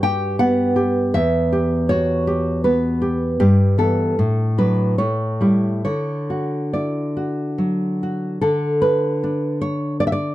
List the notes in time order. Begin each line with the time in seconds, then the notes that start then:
Already playing: G2 F#4
0.03 G4 G5
0.39 B3 F#5
0.76 G4
1.14 E2 E5
1.52 G4
1.89 F#4 C#5
2.27 G4
2.64 B3 B4
3.02 G4
3.40 G2 G4
3.78 E3 B3 A4
4.19 A2
4.58 F#3 D4 B4
4.98 A2 C#5
5.41 G3 E4
5.85 D3 C#5
6.30 F#4
6.73 E4 D5
7.17 F#4
7.58 F#3
8.03 F#4
8.41 D3 A4
8.82 B4
9.23 D4
9.61 C#5
10.00 D5
10.07 E5
10.12 D5